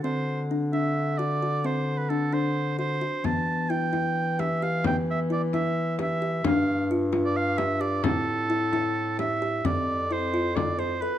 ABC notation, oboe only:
X:1
M:7/8
L:1/16
Q:1/4=131
K:Ddor
V:1 name="Oboe"
c4 z2 e4 d4 | c3 B A2 c4 c4 | a4 g6 e2 f2 | g2 e2 d2 e4 e4 |
f4 z3 d f2 e2 d2 | A8- A2 e4 | d4 c4 d2 c2 B2 |]